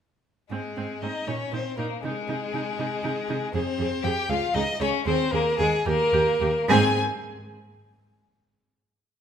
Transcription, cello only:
0.50 G#2
0.77 G#2
1.02 G#2
1.27 A#2
1.52 A#2
1.78 A#2
2.03 C3
2.28 C3
2.53 C3
2.78 C3
3.03 C3
3.29 C3
3.54 F2
3.78 F2
4.03 F2
4.29 C#2
4.54 C#2
4.81 C#2
5.06 D#2
5.33 D#2
5.59 D#2
5.86 D#2
6.13 D#2
6.41 D#2
6.68 G#2

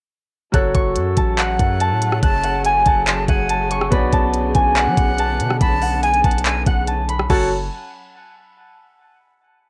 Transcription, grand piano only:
0.52 F#3 F#4 A4 C#5
3.90 B3 F#4 C#5 D5
7.30 F#3 F#4 A4 C#5

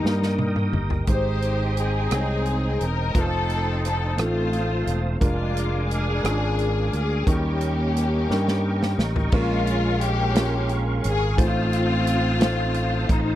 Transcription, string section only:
Already playing: G3 A#3 D#4
1.08 D#4 G4 C5
1.79 C4 D#4 G#4
2.82 A#4
3.17 C4 D#4 A4
3.85 A4
4.21 A3 C4 F4
5.24 G#3 D4 F4
5.92 D4 G#4
6.96 G#4
7.28 A#3 C#4 G4
9.01 D#4
9.34 G#3 C#4 F4
10.01 C#4 G4
11.07 G#4
11.41 C4 F4
13.11 D#4

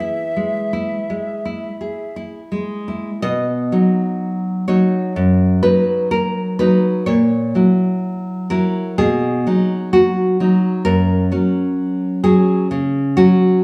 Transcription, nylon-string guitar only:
Already playing: E3 G#4
0.00 E4
0.36 G#3
0.73 E4
1.10 G#3
1.45 E4
1.81 G#4
2.16 E4
2.52 G#3
2.88 E4
3.22 B2 D#5
3.72 F#3 D#4
4.68 F#3 D#4 C#5
5.16 F#2
5.63 F#3 D#4 B4
6.11 A#4
6.59 F#3 D#4 B4
7.06 A#2 C#5
7.55 F#3 E4
8.50 F#3 E4 A#4
8.98 B2 G#4
9.47 F#3 D#4
9.93 F#4
10.40 F#3 D#4
10.85 F#2 A#4
11.32 F#3 C#4
12.24 F#3 C#4 G#4
12.71 C#3
13.17 F#3 C#4 F#4

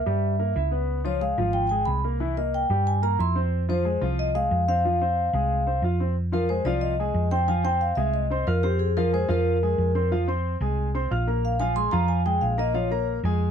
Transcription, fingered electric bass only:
0.06 G2
0.56 C#2
1.38 G#1
1.87 C2
2.70 G2
3.19 F2
4.02 C2
4.51 F2
5.33 C2
5.82 F2
6.65 C2
7.14 F2
7.97 C2
8.47 F2
9.29 F2
9.78 F2
10.61 C2
11.11 A#1
11.93 F2
12.42 A#1
13.23 F2

